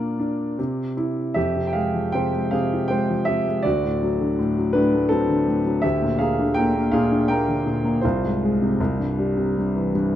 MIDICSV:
0, 0, Header, 1, 2, 480
1, 0, Start_track
1, 0, Tempo, 774194
1, 846, Time_signature, 3, 2, 24, 8
1, 1802, Tempo, 732601
1, 5162, Tempo, 764331
1, 6494, End_track
2, 0, Start_track
2, 0, Title_t, "Grand piano"
2, 0, Program_c, 0, 0
2, 0, Control_c, 0, 64, 127
2, 0, Note_on_c, 0, 46, 57
2, 0, Note_on_c, 0, 58, 52
2, 0, Note_on_c, 0, 62, 48
2, 0, Note_on_c, 0, 65, 59
2, 0, Note_on_c, 0, 74, 89
2, 112, Note_off_c, 0, 62, 0
2, 121, Note_on_c, 0, 62, 48
2, 338, Note_off_c, 0, 46, 0
2, 347, Note_off_c, 0, 58, 0
2, 355, Note_off_c, 0, 62, 0
2, 364, Note_on_c, 0, 48, 58
2, 371, Control_c, 0, 64, 0
2, 499, Control_c, 0, 64, 127
2, 573, Note_off_c, 0, 74, 0
2, 580, Note_off_c, 0, 65, 0
2, 602, Note_on_c, 0, 64, 46
2, 832, Note_off_c, 0, 48, 0
2, 833, Note_on_c, 0, 76, 71
2, 838, Note_off_c, 0, 64, 0
2, 842, Note_on_c, 0, 41, 51
2, 844, Note_on_c, 0, 67, 62
2, 854, Control_c, 0, 64, 0
2, 966, Note_on_c, 0, 48, 37
2, 980, Control_c, 0, 64, 127
2, 1029, Note_off_c, 0, 67, 0
2, 1037, Note_on_c, 0, 79, 56
2, 1044, Note_off_c, 0, 76, 0
2, 1071, Note_on_c, 0, 77, 68
2, 1084, Note_on_c, 0, 56, 46
2, 1085, Note_off_c, 0, 79, 0
2, 1088, Note_on_c, 0, 68, 47
2, 1204, Note_on_c, 0, 53, 43
2, 1313, Note_off_c, 0, 68, 0
2, 1316, Note_on_c, 0, 79, 75
2, 1317, Note_off_c, 0, 48, 0
2, 1327, Note_on_c, 0, 48, 46
2, 1329, Note_off_c, 0, 77, 0
2, 1332, Note_on_c, 0, 72, 59
2, 1435, Note_off_c, 0, 56, 0
2, 1444, Note_on_c, 0, 56, 48
2, 1552, Note_off_c, 0, 72, 0
2, 1555, Note_on_c, 0, 77, 73
2, 1556, Note_off_c, 0, 48, 0
2, 1566, Note_on_c, 0, 48, 58
2, 1567, Note_on_c, 0, 68, 63
2, 1569, Note_off_c, 0, 79, 0
2, 1692, Note_on_c, 0, 65, 39
2, 1784, Note_on_c, 0, 79, 78
2, 1785, Note_off_c, 0, 68, 0
2, 1796, Note_off_c, 0, 56, 0
2, 1801, Note_on_c, 0, 72, 61
2, 1803, Note_off_c, 0, 77, 0
2, 1806, Note_on_c, 0, 56, 43
2, 1917, Note_off_c, 0, 53, 0
2, 1927, Note_on_c, 0, 53, 44
2, 2027, Note_on_c, 0, 76, 79
2, 2029, Note_off_c, 0, 72, 0
2, 2042, Note_off_c, 0, 48, 0
2, 2042, Note_on_c, 0, 67, 56
2, 2045, Note_off_c, 0, 79, 0
2, 2052, Note_on_c, 0, 48, 43
2, 2161, Note_off_c, 0, 56, 0
2, 2171, Note_on_c, 0, 56, 45
2, 2261, Note_off_c, 0, 41, 0
2, 2271, Note_off_c, 0, 67, 0
2, 2273, Note_on_c, 0, 74, 75
2, 2275, Note_off_c, 0, 65, 0
2, 2281, Note_off_c, 0, 53, 0
2, 2286, Note_off_c, 0, 48, 0
2, 2287, Note_on_c, 0, 38, 56
2, 2288, Note_off_c, 0, 56, 0
2, 2288, Note_off_c, 0, 76, 0
2, 2289, Note_on_c, 0, 66, 64
2, 2298, Control_c, 0, 64, 0
2, 2407, Control_c, 0, 64, 127
2, 2409, Note_on_c, 0, 45, 41
2, 2532, Note_on_c, 0, 54, 47
2, 2653, Note_on_c, 0, 50, 47
2, 2764, Note_off_c, 0, 45, 0
2, 2773, Note_on_c, 0, 45, 50
2, 2882, Note_off_c, 0, 54, 0
2, 2892, Note_on_c, 0, 54, 49
2, 2981, Note_off_c, 0, 66, 0
2, 2996, Note_on_c, 0, 71, 72
2, 3008, Note_off_c, 0, 45, 0
2, 3009, Note_on_c, 0, 62, 62
2, 3017, Note_on_c, 0, 45, 61
2, 3021, Note_off_c, 0, 74, 0
2, 3134, Note_on_c, 0, 57, 41
2, 3223, Note_off_c, 0, 71, 0
2, 3230, Note_off_c, 0, 62, 0
2, 3231, Note_on_c, 0, 69, 80
2, 3238, Note_off_c, 0, 54, 0
2, 3244, Note_on_c, 0, 60, 57
2, 3248, Note_on_c, 0, 54, 51
2, 3354, Note_off_c, 0, 50, 0
2, 3363, Note_on_c, 0, 50, 45
2, 3477, Note_off_c, 0, 45, 0
2, 3487, Note_on_c, 0, 45, 49
2, 3571, Note_off_c, 0, 69, 0
2, 3578, Note_off_c, 0, 60, 0
2, 3592, Note_off_c, 0, 54, 0
2, 3602, Note_on_c, 0, 54, 47
2, 3695, Note_off_c, 0, 38, 0
2, 3709, Note_off_c, 0, 57, 0
2, 3709, Note_on_c, 0, 76, 79
2, 3711, Note_off_c, 0, 50, 0
2, 3717, Note_off_c, 0, 45, 0
2, 3719, Note_off_c, 0, 54, 0
2, 3720, Note_on_c, 0, 38, 60
2, 3720, Note_on_c, 0, 67, 60
2, 3733, Control_c, 0, 64, 0
2, 3841, Note_on_c, 0, 46, 46
2, 3857, Control_c, 0, 64, 127
2, 3943, Note_off_c, 0, 67, 0
2, 3950, Note_on_c, 0, 77, 74
2, 3959, Note_on_c, 0, 68, 58
2, 3962, Note_off_c, 0, 76, 0
2, 3966, Note_on_c, 0, 58, 52
2, 4086, Note_on_c, 0, 50, 55
2, 4182, Note_off_c, 0, 68, 0
2, 4185, Note_on_c, 0, 79, 86
2, 4195, Note_on_c, 0, 70, 66
2, 4200, Note_off_c, 0, 46, 0
2, 4202, Note_off_c, 0, 77, 0
2, 4210, Note_on_c, 0, 46, 50
2, 4312, Note_off_c, 0, 58, 0
2, 4322, Note_on_c, 0, 58, 56
2, 4419, Note_off_c, 0, 70, 0
2, 4429, Note_off_c, 0, 46, 0
2, 4429, Note_on_c, 0, 77, 84
2, 4438, Note_on_c, 0, 46, 67
2, 4439, Note_off_c, 0, 79, 0
2, 4440, Note_on_c, 0, 68, 69
2, 4559, Note_on_c, 0, 62, 47
2, 4661, Note_off_c, 0, 68, 0
2, 4669, Note_on_c, 0, 79, 88
2, 4674, Note_off_c, 0, 58, 0
2, 4677, Note_on_c, 0, 70, 67
2, 4679, Note_off_c, 0, 77, 0
2, 4684, Note_on_c, 0, 58, 54
2, 4790, Note_off_c, 0, 50, 0
2, 4800, Note_on_c, 0, 50, 49
2, 4907, Note_off_c, 0, 46, 0
2, 4917, Note_on_c, 0, 46, 50
2, 5027, Note_off_c, 0, 58, 0
2, 5037, Note_on_c, 0, 58, 48
2, 5132, Note_off_c, 0, 79, 0
2, 5134, Note_off_c, 0, 38, 0
2, 5136, Note_off_c, 0, 70, 0
2, 5144, Note_off_c, 0, 62, 0
2, 5149, Note_on_c, 0, 72, 70
2, 5153, Note_off_c, 0, 50, 0
2, 5155, Note_off_c, 0, 46, 0
2, 5158, Note_off_c, 0, 58, 0
2, 5160, Note_on_c, 0, 65, 54
2, 5169, Note_on_c, 0, 36, 61
2, 5171, Control_c, 0, 64, 0
2, 5278, Control_c, 0, 64, 127
2, 5292, Note_on_c, 0, 44, 47
2, 5411, Note_on_c, 0, 56, 53
2, 5526, Note_on_c, 0, 48, 52
2, 5628, Note_off_c, 0, 36, 0
2, 5633, Note_off_c, 0, 44, 0
2, 5637, Note_off_c, 0, 56, 0
2, 5638, Note_off_c, 0, 48, 0
2, 5645, Note_on_c, 0, 36, 61
2, 5647, Control_c, 0, 64, 0
2, 5761, Note_on_c, 0, 43, 44
2, 5764, Control_c, 0, 64, 127
2, 5885, Note_on_c, 0, 55, 49
2, 5998, Note_on_c, 0, 48, 43
2, 6115, Note_off_c, 0, 43, 0
2, 6124, Note_on_c, 0, 43, 41
2, 6245, Note_on_c, 0, 52, 43
2, 6330, Note_off_c, 0, 72, 0
2, 6336, Note_off_c, 0, 65, 0
2, 6355, Note_off_c, 0, 43, 0
2, 6365, Note_on_c, 0, 43, 51
2, 6494, Note_off_c, 0, 36, 0
2, 6494, Note_off_c, 0, 43, 0
2, 6494, Note_off_c, 0, 48, 0
2, 6494, Note_off_c, 0, 52, 0
2, 6494, Note_off_c, 0, 55, 0
2, 6494, End_track
0, 0, End_of_file